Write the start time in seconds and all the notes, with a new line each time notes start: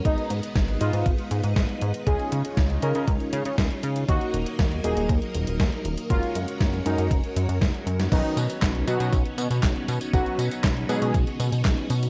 Already playing: G#3
0.05 G#1 B3 D#4 G#4 B4 D#5, kick, closed hi-hat
0.18 closed hi-hat
0.30 G#2, closed hi-hat
0.43 closed hi-hat
0.55 G#1, kick, snare, closed hi-hat
0.68 closed hi-hat
0.81 G#2 B3 D#4 F4 G#4 D#5, closed hi-hat
0.93 G#2, closed hi-hat
1.06 G#1, kick, closed hi-hat
1.18 closed hi-hat
1.31 G#2, closed hi-hat
1.44 G#2, closed hi-hat
1.56 G#1, kick, snare, closed hi-hat
1.69 closed hi-hat
1.81 G#2, closed hi-hat
1.94 closed hi-hat
2.07 C#2 C#4 F4 G#4 C#5 D#5, kick, closed hi-hat
2.19 closed hi-hat
2.32 C#3, closed hi-hat
2.45 closed hi-hat
2.57 C#2, kick, snare, closed hi-hat
2.70 closed hi-hat
2.82 C#3 C#4 F4 G#4 A#4 D#5, closed hi-hat
2.95 C#3, closed hi-hat
3.08 C#2, kick, closed hi-hat
3.20 closed hi-hat
3.33 C#3, closed hi-hat
3.45 C#3, closed hi-hat
3.58 C#2, kick, snare, closed hi-hat
3.71 closed hi-hat
3.83 C#3, closed hi-hat
3.96 closed hi-hat
4.08 D#2 F#3 A#3 D#4 F#4 A#4 D#5, kick, closed hi-hat
4.21 closed hi-hat
4.34 D#1, closed hi-hat
4.46 closed hi-hat
4.59 D#2, kick, snare, closed hi-hat
4.72 closed hi-hat
4.84 D#1 A#3 D#4 F#4 G#4 D#5, closed hi-hat
4.97 D#1, closed hi-hat
5.09 D#2, kick, closed hi-hat
5.22 closed hi-hat
5.34 D#1, closed hi-hat
5.47 D#1, closed hi-hat
5.60 D#2, kick, snare, closed hi-hat
5.72 closed hi-hat
5.85 D#1, closed hi-hat
5.97 closed hi-hat
6.10 F#1 G#3 C#4 F4 F#4 A#4 C#5, kick, closed hi-hat
6.23 closed hi-hat
6.35 F#2, closed hi-hat
6.48 closed hi-hat
6.61 F#1, kick, snare, closed hi-hat
6.73 closed hi-hat
6.86 F#2 G#3 C#4 D#4 F#4 A#4, closed hi-hat
6.98 F#2, closed hi-hat
7.11 F#1, kick, closed hi-hat
7.24 closed hi-hat
7.36 F#2, closed hi-hat
7.49 F#2, closed hi-hat
7.61 F#1, kick, snare, closed hi-hat
7.74 closed hi-hat
7.86 F#2, closed hi-hat
7.99 snare, closed hi-hat
8.12 B1 D#3 F#3 B3 C#4 D#4 F#4 B4 C#5, kick, closed hi-hat, crash, tambourine
8.25 closed hi-hat
8.37 B2, closed hi-hat, tambourine
8.50 closed hi-hat, tambourine
8.62 B1, kick, snare, clap, closed hi-hat, tambourine
8.75 closed hi-hat
8.88 B2 F#3 C#4 D#4 F#4 B4, closed hi-hat, tambourine
9.00 B2, closed hi-hat, tambourine
9.13 B1, kick, closed hi-hat, tambourine
9.25 closed hi-hat
9.38 B2, closed hi-hat, tambourine
9.50 B2, closed hi-hat, tambourine
9.63 B1, kick, snare, clap, closed hi-hat
9.76 closed hi-hat
9.88 B2, closed hi-hat, tambourine
10.01 closed hi-hat, tambourine
10.13 B1 F#3 C#4 D#4 F#4 B4, kick, closed hi-hat, tambourine
10.26 closed hi-hat
10.38 B2, closed hi-hat, tambourine
10.51 closed hi-hat, tambourine
10.64 B1, kick, snare, clap, closed hi-hat, tambourine
10.77 closed hi-hat
10.89 B2 F#3 G#3 C#4 D#4 G#4 B4, closed hi-hat, tambourine
11.02 B2, closed hi-hat, tambourine
11.14 B1, kick, closed hi-hat, tambourine
11.27 closed hi-hat
11.39 B2, closed hi-hat, tambourine
11.52 B2, closed hi-hat, tambourine
11.65 B1, kick, snare, clap, closed hi-hat
11.77 closed hi-hat
11.90 B2, closed hi-hat, tambourine
12.03 closed hi-hat, tambourine